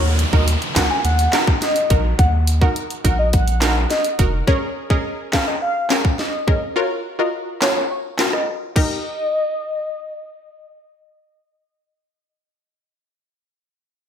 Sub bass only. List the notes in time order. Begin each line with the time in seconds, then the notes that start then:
Already playing: D#2
0.33 D#2
0.76 C#2
1.05 D#2
1.90 A#1
2.19 D#2
3.05 A#1
4.19 F1